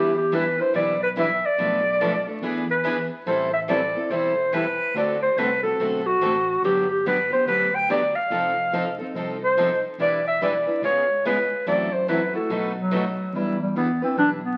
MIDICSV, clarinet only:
0, 0, Header, 1, 2, 480
1, 0, Start_track
1, 0, Key_signature, 1, "minor"
1, 0, Tempo, 419874
1, 1803, Time_signature, 4, 2, 24, 8
1, 16660, End_track
2, 0, Start_track
2, 0, Title_t, "Clarinet"
2, 0, Program_c, 0, 71
2, 0, Note_on_c, 0, 67, 74
2, 171, Note_off_c, 0, 67, 0
2, 202, Note_on_c, 0, 67, 68
2, 399, Note_on_c, 0, 71, 79
2, 416, Note_off_c, 0, 67, 0
2, 697, Note_on_c, 0, 72, 78
2, 714, Note_off_c, 0, 71, 0
2, 856, Note_off_c, 0, 72, 0
2, 863, Note_on_c, 0, 74, 79
2, 1129, Note_off_c, 0, 74, 0
2, 1177, Note_on_c, 0, 71, 78
2, 1251, Note_off_c, 0, 71, 0
2, 1364, Note_on_c, 0, 76, 83
2, 1669, Note_on_c, 0, 74, 87
2, 1687, Note_off_c, 0, 76, 0
2, 2606, Note_off_c, 0, 74, 0
2, 3094, Note_on_c, 0, 71, 72
2, 3526, Note_off_c, 0, 71, 0
2, 3744, Note_on_c, 0, 72, 75
2, 4011, Note_off_c, 0, 72, 0
2, 4043, Note_on_c, 0, 76, 72
2, 4121, Note_off_c, 0, 76, 0
2, 4223, Note_on_c, 0, 74, 80
2, 4701, Note_on_c, 0, 72, 82
2, 4719, Note_off_c, 0, 74, 0
2, 5186, Note_on_c, 0, 71, 76
2, 5204, Note_off_c, 0, 72, 0
2, 5658, Note_off_c, 0, 71, 0
2, 5684, Note_on_c, 0, 74, 80
2, 5943, Note_off_c, 0, 74, 0
2, 5972, Note_on_c, 0, 72, 72
2, 6150, Note_on_c, 0, 71, 73
2, 6167, Note_off_c, 0, 72, 0
2, 6430, Note_off_c, 0, 71, 0
2, 6437, Note_on_c, 0, 69, 87
2, 6930, Note_on_c, 0, 66, 79
2, 6947, Note_off_c, 0, 69, 0
2, 7582, Note_off_c, 0, 66, 0
2, 7602, Note_on_c, 0, 67, 76
2, 7862, Note_off_c, 0, 67, 0
2, 7893, Note_on_c, 0, 67, 73
2, 8051, Note_off_c, 0, 67, 0
2, 8086, Note_on_c, 0, 71, 76
2, 8345, Note_off_c, 0, 71, 0
2, 8378, Note_on_c, 0, 72, 81
2, 8534, Note_off_c, 0, 72, 0
2, 8547, Note_on_c, 0, 71, 86
2, 8862, Note_on_c, 0, 79, 83
2, 8879, Note_off_c, 0, 71, 0
2, 9028, Note_off_c, 0, 79, 0
2, 9043, Note_on_c, 0, 74, 84
2, 9326, Note_on_c, 0, 77, 82
2, 9343, Note_off_c, 0, 74, 0
2, 10276, Note_off_c, 0, 77, 0
2, 10796, Note_on_c, 0, 72, 85
2, 11219, Note_off_c, 0, 72, 0
2, 11449, Note_on_c, 0, 74, 87
2, 11706, Note_off_c, 0, 74, 0
2, 11747, Note_on_c, 0, 76, 82
2, 11899, Note_off_c, 0, 76, 0
2, 11922, Note_on_c, 0, 74, 80
2, 12353, Note_off_c, 0, 74, 0
2, 12401, Note_on_c, 0, 73, 83
2, 12832, Note_off_c, 0, 73, 0
2, 12879, Note_on_c, 0, 71, 74
2, 13310, Note_off_c, 0, 71, 0
2, 13349, Note_on_c, 0, 74, 77
2, 13640, Note_on_c, 0, 72, 70
2, 13657, Note_off_c, 0, 74, 0
2, 13815, Note_off_c, 0, 72, 0
2, 13822, Note_on_c, 0, 71, 73
2, 14089, Note_off_c, 0, 71, 0
2, 14126, Note_on_c, 0, 69, 69
2, 14560, Note_off_c, 0, 69, 0
2, 14625, Note_on_c, 0, 54, 72
2, 15272, Note_on_c, 0, 55, 76
2, 15289, Note_off_c, 0, 54, 0
2, 15552, Note_off_c, 0, 55, 0
2, 15565, Note_on_c, 0, 55, 67
2, 15723, Note_off_c, 0, 55, 0
2, 15742, Note_on_c, 0, 59, 80
2, 16006, Note_off_c, 0, 59, 0
2, 16044, Note_on_c, 0, 60, 85
2, 16201, Note_off_c, 0, 60, 0
2, 16217, Note_on_c, 0, 62, 88
2, 16345, Note_off_c, 0, 62, 0
2, 16510, Note_on_c, 0, 59, 78
2, 16660, Note_off_c, 0, 59, 0
2, 16660, End_track
0, 0, End_of_file